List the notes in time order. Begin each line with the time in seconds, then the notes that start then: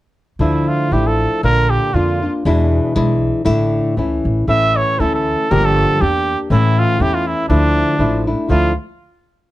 0.39 D2 D3 F3 A3 D4 E4
0.69 F4
0.91 A1 F3 A3 D4 E4 G4
1.07 A4
1.43 A#1 A#2 D3 A#3 D4 F4 A#4
1.70 G4
1.94 F2 D3 A#3 D4 F4
2.22 A#3 D4 F4
2.45 E2 B2 E3 G#3 D4 E4
2.95 B1 E3 G#3 D4 E4
3.45 A1 A2 D3 A3 D4 E4
3.97 C#2 E3 A3 C#4 E4
4.25 A1
4.47 A1 A2 E3 A3 C#4 E4 E5
4.77 C#5
4.99 D2 E3 A3 C#4 E4 A4
5.15 A4
5.50 G1 G2 D3 F3 A#3 D4 G4 A#4
5.65 A4
6.01 E2 A#3 D4 G4
6.50 A1 A2 E3 A3 C#4 E4
6.79 F4
7.00 E2 E3 A3 C#4 E4 G4
7.15 F4
7.27 E4
7.49 D2 D3 F3 A3 D4 E4
7.99 A1 F3 A3 D4 E4
8.27 A3 D4 E4
8.49 D2 D3 F3 A3 D4 E4 F4